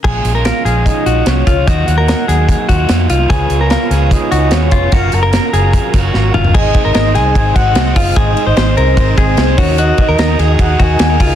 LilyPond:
<<
  \new Staff \with { instrumentName = "Soft synth lead" } { \time 4/4 \key aes \mixolydian \tempo 4 = 148 r4 f''8 f''8 ees''4 des''4 | ees''8 ges''2 r4. | r4 f''4 ees''4 des''4 | f''8 bes''2 r4. |
ees''4 ees''8 aes''4 ges''4 f''8 | ees''4 r8 c''2 des''8 | ees''2 ges''8 aes''4. | }
  \new Staff \with { instrumentName = "Transistor combo organ" } { \time 4/4 \key aes \mixolydian r1 | r1 | <f' ces'' des''>1 | <ges' bes' f''>1 |
<ees' aes' c'' ees''>1~ | <ees' aes' c'' ees''>2.~ <ees' aes' c'' ees''>8 <ees' ges' bes' ees''>8~ | <ees' ges' bes' ees''>1 | }
  \new Staff \with { instrumentName = "Clean electric guitar" } { \time 4/4 \key aes \mixolydian aes'8. bes'16 bes'8 aes'4 ges'4 f'8 | ges'8. bes'16 bes'8 aes'4 ges'4 f'8 | aes'8. bes'16 bes'8 aes'4 ges'4 f'8 | ges'8. bes'16 bes'8 aes'4 ges'4 f'8 |
aes'8. bes'16 bes'8 aes'4 ges'4 f'8 | aes'8. c''16 c''8 bes'4 aes'4 ges'8 | ges'8. bes'16 bes'8 aes'4 ges'4 f'8 | }
  \new Staff \with { instrumentName = "Overdriven electric guitar" } { \time 4/4 \key aes \mixolydian <bes, f aes des' f'>8. <aes des' f'>8. <f aes des' f'>4 <f aes des' f'>8 <f aes des' f'>8. <aes des' f'>16 | <ees ges bes ees' f'>8. <bes ees'>8. <ges bes ees'>4 <ges bes ees' f'>8 <ges bes ees' f'>8. <bes ees' f'>16 | <des aes ces' f' aes'>8. <ces' f' aes'>8. <aes ces' f' aes'>4 <aes ces' f' aes'>8 <aes ces' f' aes'>8. <ces' f' aes'>16 | <ges des' f' bes'>8. <des' f' bes'>8. <ges des' f' bes'>4 <ges des' f' bes'>8 <ges des' f' bes'>8. <des' f' bes'>16 |
<aes c' ees' c''>8 <aes c' ees' c''>8. <c' ees' c''>8. <aes c' ees' c''>8 <aes c' ees' c''>8. <aes c' ees' c''>8. | <aes c' ees' c''>8 <aes c' ees' c''>8. <c' ees' c''>8. <aes c' ees' c''>8 <aes c' ees' c''>8. <aes c' ees' c''>16 <ees ees' ges' bes'>8~ | <ees ees' ges' bes'>8 <ees ees' ges' bes'>8. <ees' ges' bes'>8. <ees ees' ges' bes'>8 <ees ees' ges' bes'>8. <ees ees' ges' bes'>8. | }
  \new Staff \with { instrumentName = "Fingered electric bass" } { \clef bass \time 4/4 \key aes \mixolydian bes,,8 bes,,8. r16 bes,,8. r16 bes,,8 c,8 des,8 | ees,8 ees,8. r16 ees,8. r16 ees,8 f,8 c,8 | des,8 des,8. r16 des,8. r16 des,8 ees,8 f,,8 | ges,,8 ges,,8. r16 ges,,8. r16 ges,,8 aes,,8 ges,,8 |
aes,,8 r16 aes,,16 aes,,8 c,8 aes,,8 aes,,8 c,8 ges,,8 | aes,,8 r16 aes,,16 aes,,8 c,8 aes,,8 aes,,8 c,8 ees,8~ | ees,8 r16 ees,16 ees,8 ees,8 ees,8 ees,8 ees,8 des,8 | }
  \new DrumStaff \with { instrumentName = "Drums" } \drummode { \time 4/4 <cymc bd>8 hh8 <hh sn>8 hh8 <hh bd>8 hh8 <hh sn>8 <hh bd>8 | <hh bd>8 hh8 <hh sn>8 <hh sn>8 <hh bd>8 <hh bd>8 <hh sn>8 hh8 | <hh bd>8 hh8 <hh sn>8 <hh sn>8 <hh bd>8 hh8 <hh sn>8 <hh bd>8 | <hh bd>8 hh8 <hh sn>8 hh8 <hh bd>8 <hh bd>8 sn8 toml16 tomfh16 |
<cymc bd>8 <bd cymr>8 <cymr sn>8 <cymr sn>8 <bd cymr>8 <bd cymr>8 <cymr sn>8 <hho bd cymr>8 | <hhp bd cymr>8 cymr8 <cymr sn>8 cymr8 <bd cymr>8 <bd cymr>8 <cymr sn>8 <hho bd cymr>8 | <hhp cymr>8 <bd cymr>8 <cymr sn>8 <cymr sn>8 <bd cymr>8 <bd cymr>8 <cymr sn>8 <hho bd cymr>8 | }
>>